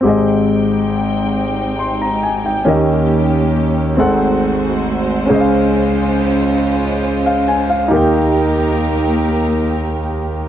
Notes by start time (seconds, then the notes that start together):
0.01 G#1 G#2 G#3 C4 D#4 G4
0.05 C4 G#4 D#5 G5
1.79 C6
2.02 A#5
2.23 G#5
2.46 G5
2.65 D#2 D#3 A#3 C#4 G4 A#4 D#5
3.97 G#1 G#2 G#3 A3 C4 F#4 G#4 A4 C5 F#5
5.26 C#2 C#3 C#4 F4 G#4
5.31 C5 D#5
5.40 F5
7.26 F5
7.48 G#5
7.70 F5
7.88 D#2 D#3 A#3 D#4 G4 A#4
7.93 A#4 G5